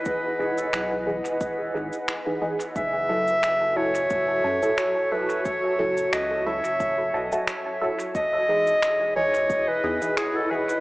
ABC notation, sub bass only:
X:1
M:4/4
L:1/16
Q:"Swing 16ths" 1/4=89
K:F#dor
V:1 name="Sub bass" clef=bass
z2 E,,,2 B,,,3 E,,,3 G,,, z4 z | F,,,8 F,,,2 F,, z4 z | z2 F,,,2 C,,3 F,,,3 B,,, z4 z | E,,,8 E,,,2 E,, z4 z |]